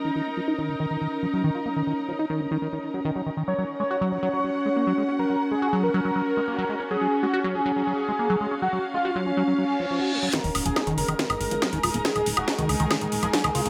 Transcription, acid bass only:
\new Staff \with { instrumentName = "Acid bass" } { \clef bass \time 4/4 \key ees \minor \tempo 4 = 140 ees16 ees16 r16 f16 ees'16 ees16 des16 ees16 ees16 ees16 r16 f16 ges16 ees16 f'16 bes16 | ees16 ees16 r16 f16 ees'16 ees16 des16 ees16 ees16 ees16 r16 ges16 ees16 ges16 ees16 ees16 | ges16 ges16 r16 aes16 ges'16 ges16 f16 ges16 ges16 ges16 r16 aes16 bes16 ges16 aes16 des'16 | ges16 ges16 r16 aes16 ges'16 ges16 f16 ges16 ges16 ges16 r16 aes16 bes16 ges16 aes16 des'16 |
ges16 ges16 r16 aes16 ges'16 ges16 f16 ges16 ges16 ges16 r16 aes16 bes16 ges16 aes16 des'16 | ges16 ges16 r16 aes16 ges'16 ges16 f16 ges16 ges16 ges16 r16 f16 f16 ges'16 aes16 ges16 | ees16 ees16 r16 f16 ees'16 ees16 des16 ees16 ees16 ees16 r16 f16 ges16 ees16 f'16 bes16 | ees16 ees16 r16 f16 ees'16 ees16 des16 ees16 ees16 ees16 r16 f16 ges16 ees16 f'16 bes16 | }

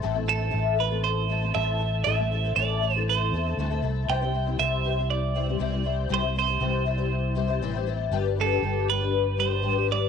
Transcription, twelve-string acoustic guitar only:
\new Staff \with { instrumentName = "Twelve-string acoustic guitar" } { \time 4/4 \key a \minor \tempo 4 = 119 <a, e a c' e' a'>16 <a c' e' a'>16 <a c' e' a'>16 <a c' e' a'>16 <a, e a c' e' a'>8 <a c' e' a'>16 <a c' e' a'>8. <a c' e' a'>16 <a c' e' a'>16 <a, e a c' e' a'>8 <a c' e' a'>8 | <a, e a c' e' a'>16 <a c' e' a'>16 <a c' e' a'>16 <a c' e' a'>16 <a, e a c' e' a'>8 <a c' e' a'>16 <a c' e' a'>8. <a c' e' a'>16 <a c' e' a'>16 <a, e a c' e' a'>16 <a c' e' a'>16 <a c' e' a'>8 | <c e g c' e' c''>16 <g c' e' c''>16 <g c' e' c''>16 <g c' e' c''>16 <c e g c' e' c''>8 <g c' e' c''>16 <g c' e' c''>8. <g c' e' c''>16 <g c' e' c''>16 <c e g c' e' c''>16 <g c' e' c''>16 <g c' e' c''>8 | <c e g c' e' c''>16 <g c' e' c''>16 <g c' e' c''>16 <g c' e' c''>16 <c e g c' e' c''>8 <g c' e' c''>16 <g c' e' c''>8. <g c' e' c''>16 <g c' e' c''>16 <c e g c' e' c''>16 <g c' e' c''>16 <g c' e' c''>8 |
<g d' g' b'>16 <d' g' b'>16 <g d' g' b'>16 <d' g' b'>16 <g d' g' b'>8 <g d' g' b'>16 <d' g' b'>8. <g d' g' b'>16 <d' g' b'>16 <g d' g' b'>16 <d' g' b'>16 <g d' g' b'>8 | }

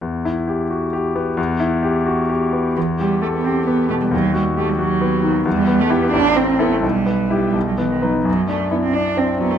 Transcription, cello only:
\new Staff \with { instrumentName = "Cello" } { \time 6/8 \key e \minor \tempo 4. = 88 r2. | r2. | e8 g8 a16 b16 c'8 b8 a16 g16 | fis8 g8 a16 g16 fis4. |
g8. a16 b8 d'8 c'8 b16 a16 | g4. r16 fis16 e16 dis16 fis16 e16 | \key d \mixolydian fis8 a8 b16 c'16 d'8 c'8 b16 a16 | }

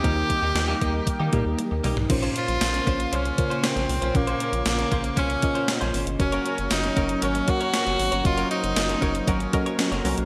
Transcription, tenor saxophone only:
\new Staff \with { instrumentName = "Tenor saxophone" } { \time 4/4 \key bes \dorian \tempo 4 = 117 g'2. r4 | r8 f'4. des'4 c'4 | bes4 bes4 des'4. r8 | des'4 ees'4 des'8 ges'4. |
f'8 ees'4. des'4 r4 | }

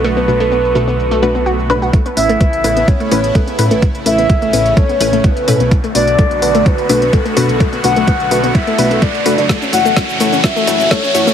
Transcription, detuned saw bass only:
\new Staff \with { instrumentName = "Detuned saw bass" } { \clef bass \time 4/4 \key b \minor \tempo 4 = 127 b,,1 | r8 a,,8 r16 a,,16 a,,8 r8 a,,8 r8 a,16 a,,16~ | a,,16 r16 a,,8 r16 a,,16 a,,8 r8 a,,8 r8 a,16 b,,16~ | b,,16 r16 b,,8 r16 b,,16 b,,8 r8 b,,8 r8 fis,,16 b,,16~ |
b,,16 r16 b,,8 r16 b,,16 b,,8 r8 b,,8 r8 fis,,16 fis,,16~ | fis,,16 r16 fis,,8 r16 fis,,16 fis,,8 r8 fis,,8 r8 fis,16 fis,,16 | }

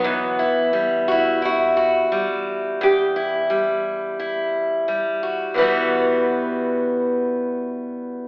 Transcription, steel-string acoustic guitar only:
\new Staff \with { instrumentName = "Steel-string acoustic guitar" } { \clef bass \time 4/4 \key e \minor \tempo 4 = 87 e,8 e'8 g8 fis'8 e'8 fis'8 g4 | e,8 e'8 g4 e'4 g8 fis'8 | <e, b, e g b fis'>1 | }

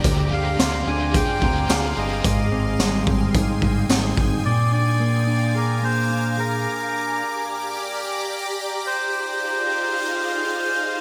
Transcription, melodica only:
\new Staff \with { instrumentName = "Melodica" } { \time 4/4 \key f \dorian \tempo 4 = 109 r8 f''4 aes''8 g''4 f''8 ees''8~ | ees''4. r2 r8 | d''8 d''4. bes'8 c''4 bes'8~ | bes'4. r2 r8 |
c''1 | }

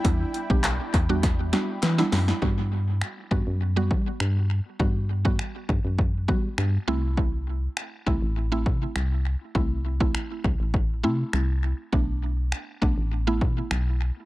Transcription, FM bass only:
\new Staff \with { instrumentName = "FM bass" } { \clef bass \time 4/4 \key g \major \tempo 4 = 101 e,8 r16 b,,8. e,4. e8 fis,8 | g,4. g,16 fis,8. g8 g,4 | g,4. g,16 fis,8. g8 g,8 c,8~ | c,4. c,16 a,,8. c8 c,4 |
c,4. c,16 a,,8. c8 c,4 | b,,4. b,,16 a,,8. b,8 b,,4 | }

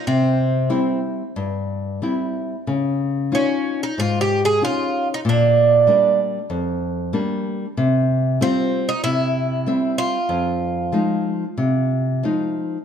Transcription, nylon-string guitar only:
\new Staff \with { instrumentName = "Nylon-string guitar" } { \time 4/4 \key c \phrygian \tempo 4 = 94 c4 <g c' e'>4 g,4 <g c' e'>4 | des4 <des' ees' f'>4 aes,4 <des' ees' f'>4 | bes,4 <g bes d'>4 f,4 <g bes d'>4 | c4 <g c' f'>4 c4 <g c' e''>4 |
f,4 <f aes ees'>4 c4 <f aes ees'>4 | }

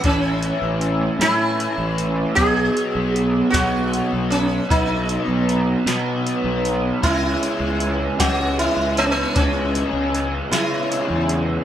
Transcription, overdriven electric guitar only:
\new Staff \with { instrumentName = "Overdriven electric guitar" } { \clef bass \time 6/8 \key b \mixolydian \tempo 4. = 52 <a, e a cis' e'>4. <a, e a cis' e'>4. | <b, fis b dis'>4. <b, fis b dis'>4. | <b, fis b dis'>4. <b, fis b dis'>4. | <cis e gis cis'>4. <cis e gis cis'>4. |
<cis e gis cis'>4. <cis e gis cis'>4. | }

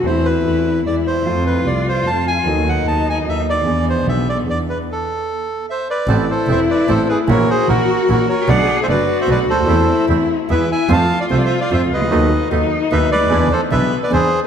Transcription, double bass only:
\new Staff \with { instrumentName = "Double bass" } { \clef bass \time 3/4 \key a \minor \tempo 4 = 150 e,4 e,4 e,4 | f,4 c,4 f,4 | dis,4 dis,4 dis,4 | e,4 b,,4 e,4 |
r2. | a,,8 r8 e,,8 r8 a,,8 r8 | ais,,8 r8 ais,,8 r8 ais,,8 r8 | b,,8 r8 fis,,8 r8 b,,8 d,8 |
e,8 r8 e,8 r8 e,8 r8 | f,8 r8 c,8 r8 f,8 cis,8 | dis,8 r8 dis,8 r8 dis,8 d,8 | e,8 r8 b,,8 r8 e,8 r8 | }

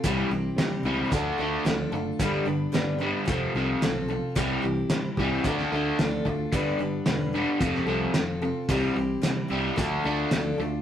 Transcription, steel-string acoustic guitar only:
\new Staff \with { instrumentName = "Steel-string acoustic guitar" } { \time 4/4 \key d \dorian \tempo 4 = 111 <c g c' e' g'>8 <c' e' g'>8 <c g c' e' g'>8 <c' e' g'>8 <f d' f' a'>8 <d' f' a'>8 <d f d' f' a'>8 <d' f' a'>8 | <g, d g b d' b'>8 <g b d' b'>8 <g, d g b d' b'>8 <g b d' b'>8 <f c' f' a'>8 <c' f' a'>8 <f c' f' a'>8 <c' f' a'>8 | <c g c' e' g'>8 <c' e' g'>8 <c g c' e' g'>8 <c' e' g'>8 <f d' f' a'>8 <d' f' a'>8 <d f d' f' a'>8 <d' f' a'>8 | <g, d g b d' b'>8 <g b d' b'>8 <g, d g b d' b'>8 <g b d' b'>8 <f c' f' a'>8 <c' f' a'>8 <f c' f' a'>8 <c' f' a'>8 |
<c g c' e' g'>8 <c' e' g'>8 <c g c' e' g'>8 <c' e' g'>8 <f d' f' a'>8 <d' f' a'>8 <d f d' f' a'>8 <d' f' a'>8 | }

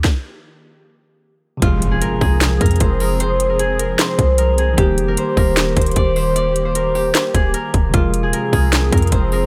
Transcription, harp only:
\new Staff \with { instrumentName = "Harp" } { \time 4/4 \key f \dorian \tempo 4 = 152 r1 | f'8. aes'16 bes'8 aes'4 bes'8 c''8 bes'8 | c''8. bes'16 aes'8 bes'8 c''4 bes'8 aes'8 | g'8. bes'16 c''8 bes'4 c''8 d''8 c''8 |
d''8. c''16 bes'8 g'4 aes'8 bes'4 | f'8. aes'16 bes'8 aes'4 bes'8 c''8 bes'8 | }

